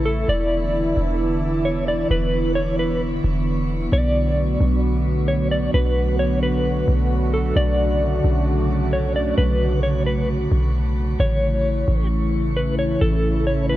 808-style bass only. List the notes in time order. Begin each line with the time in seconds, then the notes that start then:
Already playing: A1
0.29 E1
0.97 E1
2.11 E1
3.24 E1
3.92 B1
4.61 B1
5.74 B1
6.88 B1
7.56 B1
8.24 B1
9.38 B1
10.52 B1
11.20 A1
11.88 A1
13.02 A1